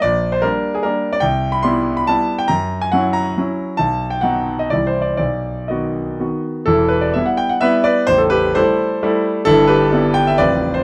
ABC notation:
X:1
M:3/4
L:1/16
Q:1/4=131
K:Gphr
V:1 name="Grand piano"
d3 c B3 A B3 d | [K:Em] g3 b c'3 b a3 g | ^a3 ^g f2 a6 | a3 g f3 ^d (3=d2 c2 d2 |
d4 ^d6 z2 | [EA]2 B d e f g f [Be]2 [Bd]2 | c A [GB]2 [Ac]6 z2 | [EA]2 [GB]4 g e [Bd]3 c |]
V:2 name="Grand piano" clef=bass
B,,,4 [G,B,D]4 [G,B,D]4 | [K:Em] C,,4 [G,B,E]4 [G,B,E]4 | F,,4 [F,^CE]4 [F,CE]4 | B,,,4 [F,B,^D]4 [C,,E,G,E]4 |
B,,,4 [^D,B,F]4 [D,B,F]4 | [E,,,E,,]4 [G,B,E]4 [G,B,E]4 | [A,,,,A,,,]4 [G,A,E]4 [G,A,E]4 | [G,,,G,,]4 [G,B,E]4 [A,,,,A,,,=F,C=F]4 |]